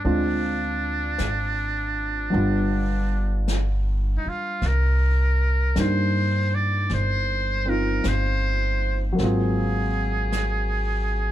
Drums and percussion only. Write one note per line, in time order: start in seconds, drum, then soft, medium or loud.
0.04 brush sweep soft
1.19 brush sweep soft
1.19 snare soft
1.19 hi-hat pedal soft
2.33 brush sweep soft
3.48 brush sweep soft
3.48 snare soft
3.48 hi-hat pedal soft
4.62 brush sweep soft
4.62 snare soft
5.76 brush sweep soft
5.76 snare soft
5.76 hi-hat pedal soft
6.89 brush sweep soft
6.89 snare soft
8.04 brush sweep soft
8.04 snare soft
8.04 hi-hat pedal soft
9.18 brush sweep soft
9.18 snare soft
10.32 brush sweep soft
10.32 snare soft
10.32 hi-hat pedal soft